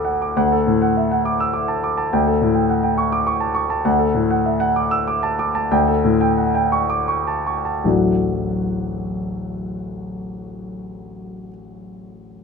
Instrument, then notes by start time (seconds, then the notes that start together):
grand piano
Already playing: D2 A4 F#5 A5 D6
0.05 F#5
0.22 D6
0.36 D2 F#5
0.52 A4
0.67 A2
0.82 F#5
0.97 E5
1.11 F#5
1.25 D6
1.40 E6
1.53 D6
1.68 A5
1.84 D6
1.97 A5
2.13 D2 G5
2.27 A4
2.42 A2
2.55 G5
2.70 F#5
2.83 G5
2.98 C#6
3.12 D6
3.27 C#6
3.41 A5
3.55 C#6
3.70 A5
3.85 D2 F#5
3.99 A4
4.14 A2
4.31 F#5
4.46 E5
4.60 F#5
4.76 D6
4.91 E6
5.08 D6
5.23 A5
5.39 D6
5.55 A5
5.71 D2 G5
5.88 A4
6.04 A2
6.21 G5
6.38 F#5
6.55 G5
6.72 C#6
6.90 D6
7.08 C#6
7.27 A5
7.47 C#6
7.65 A5
7.84 D1 A1 F#3 A3 D4 F#4